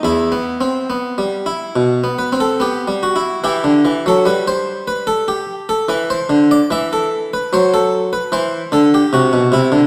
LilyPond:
<<
  \new Staff \with { instrumentName = "Harpsichord" } { \time 4/4 \key e \minor \tempo 4 = 73 << { e'2~ e'8 b'16 a'16 g'8 fis'8 | g'8. a'16 b'16 c''8 b'16 a'16 g'8 a'16 b'16 c''8 d''16 | e''16 a'8 b'16 c''16 a'8 b'16 c''8 a'16 g'16 fis'8 e'8 | } \\ { r1 | e'1 | r1 | } >> }
  \new Staff \with { instrumentName = "Harpsichord" } { \clef bass \time 4/4 \key e \minor \tuplet 3/2 { e,8 b8 c'8 b8 g8 e'8 b,8 b8 c'8 b8 g8 e'8 } | e16 d16 e16 fis16 g2 e8 d8 | e4 fis4 e8 d8 c16 b,16 c16 d16 | }
>>